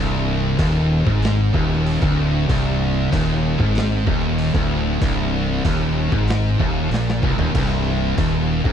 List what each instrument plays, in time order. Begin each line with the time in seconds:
Already playing: fingered electric bass C1, distorted electric guitar C2
0.59 fingered electric bass D#1, distorted electric guitar D#2, kick, open hi-hat
1.06 fingered electric bass G#1, distorted electric guitar G#2, kick
1.22 snare, open hi-hat
1.53 fingered electric bass D#1, distorted electric guitar D#2, kick
1.73 snare
1.87 open hi-hat
2.01 fingered electric bass D1, distorted electric guitar D2, kick
2.48 fingered electric bass C1, distorted electric guitar C2, kick, open hi-hat
3.11 fingered electric bass D#1, distorted electric guitar D#2, kick, open hi-hat
3.59 fingered electric bass G#1, distorted electric guitar G#2, kick
3.75 snare, open hi-hat
4.06 fingered electric bass D#1, distorted electric guitar D#2, kick
4.38 open hi-hat
4.54 fingered electric bass D1, distorted electric guitar D2, kick
5.01 fingered electric bass C1, distorted electric guitar C2, kick, open hi-hat
5.64 fingered electric bass D#1, distorted electric guitar D#2, kick, open hi-hat
6.12 fingered electric bass G#1, distorted electric guitar G#2, kick
6.28 snare, open hi-hat
6.59 fingered electric bass D#1, distorted electric guitar D#2, kick
6.90 fingered electric bass A#1, distorted electric guitar A#2, snare, open hi-hat
7.10 snare
7.22 fingered electric bass C1, distorted electric guitar C2, kick
7.37 fingered electric bass D#1, distorted electric guitar D#2, floor tom
7.54 fingered electric bass C1, distorted electric guitar C2, kick, open hi-hat, crash
8.16 fingered electric bass D#1, distorted electric guitar D#2, kick, open hi-hat
8.65 fingered electric bass G#1, distorted electric guitar G#2, kick